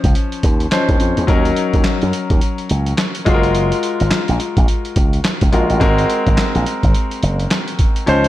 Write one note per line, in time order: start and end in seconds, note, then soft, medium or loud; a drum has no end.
0.00 0.68 F3 medium
0.00 0.68 C#4 medium
0.00 0.68 D#4 medium
0.00 0.69 C5 medium
0.00 kick loud
0.00 closed hi-hat medium
0.04 0.13 C#2 medium
0.15 closed hi-hat medium
0.32 closed hi-hat soft
0.43 0.66 D#2 medium
0.43 kick medium
0.43 closed hi-hat medium
0.60 closed hi-hat soft
0.71 1.28 F3 medium
0.71 1.26 C#4 medium
0.71 1.27 D#4 medium
0.71 1.29 C5 medium
0.71 snare loud
0.71 clap medium
0.71 closed hi-hat medium
0.89 0.98 D#2 medium
0.89 kick medium
0.89 closed hi-hat medium
1.00 1.14 F2 loud
1.00 closed hi-hat medium
1.17 1.26 E2 medium
1.17 closed hi-hat medium
1.27 1.51 D#2 loud
1.27 3.22 F#3 medium
1.27 3.22 C#4 medium
1.27 3.23 D#4 medium
1.27 3.23 A#4 medium
1.27 kick loud
1.27 closed hi-hat medium
1.45 closed hi-hat medium
1.56 closed hi-hat medium
1.74 1.83 D#2 medium
1.74 kick medium
1.74 closed hi-hat soft
1.84 snare loud
1.84 clap medium
1.84 closed hi-hat medium
2.02 2.11 F#2 medium
2.02 closed hi-hat soft
2.13 closed hi-hat medium
2.30 2.39 D#2 medium
2.30 kick loud
2.30 closed hi-hat medium
2.41 closed hi-hat medium
2.58 closed hi-hat soft
2.69 2.92 C#2 medium
2.69 closed hi-hat medium
2.86 closed hi-hat soft
2.98 snare loud
2.98 clap medium
2.98 closed hi-hat medium
3.15 closed hi-hat medium
3.25 3.71 F#1 medium
3.25 5.48 G#3 medium
3.25 5.49 F4 medium
3.25 5.49 F#4 medium
3.25 3.35 G#4 medium
3.25 kick medium
3.25 closed hi-hat medium
3.34 5.52 A#4 medium
3.43 closed hi-hat medium
3.55 closed hi-hat medium
3.72 closed hi-hat medium
3.83 closed hi-hat medium
4.00 4.09 G#1 medium
4.00 closed hi-hat soft
4.11 snare loud
4.11 clap medium
4.11 closed hi-hat medium
4.28 4.37 A#1 medium
4.28 closed hi-hat soft
4.40 closed hi-hat medium
4.57 4.66 A#1 medium
4.57 kick loud
4.57 closed hi-hat medium
4.68 closed hi-hat medium
4.85 closed hi-hat soft
4.96 5.19 C#2 medium
4.96 kick loud
4.96 closed hi-hat medium
5.13 closed hi-hat medium
5.24 snare loud
5.24 clap medium
5.24 closed hi-hat medium
5.41 5.51 C#2 medium
5.41 kick loud
5.41 closed hi-hat medium
5.52 5.66 A#1 medium
5.52 5.78 G#3 medium
5.52 5.81 F4 soft
5.52 5.80 F#4 soft
5.52 5.81 A#4 medium
5.52 closed hi-hat medium
5.70 5.79 A1 medium
5.70 closed hi-hat soft
5.80 6.03 G#1 loud
5.80 8.03 G#3 medium
5.80 8.03 C4 medium
5.80 8.04 F#4 medium
5.80 8.04 A#4 medium
5.80 kick loud
5.80 closed hi-hat medium
5.98 closed hi-hat medium
6.10 closed hi-hat medium
6.27 6.36 G#1 medium
6.27 kick medium
6.27 closed hi-hat soft
6.38 snare loud
6.38 clap medium
6.38 closed hi-hat medium
6.55 6.64 A#1 medium
6.55 closed hi-hat soft
6.66 closed hi-hat medium
6.83 6.92 G#1 medium
6.83 kick loud
6.83 closed hi-hat medium
6.95 closed hi-hat medium
7.11 closed hi-hat soft
7.23 7.45 F#1 medium
7.23 closed hi-hat medium
7.40 closed hi-hat soft
7.51 snare loud
7.51 clap medium
7.51 closed hi-hat medium
7.68 closed hi-hat medium
7.79 kick medium
7.79 closed hi-hat medium
7.96 closed hi-hat medium
8.06 8.28 C#2 loud
8.06 8.28 F3 medium
8.06 8.28 C#4 medium
8.06 8.28 D#4 medium
8.06 8.28 C5 medium
8.06 closed hi-hat medium
8.24 closed hi-hat medium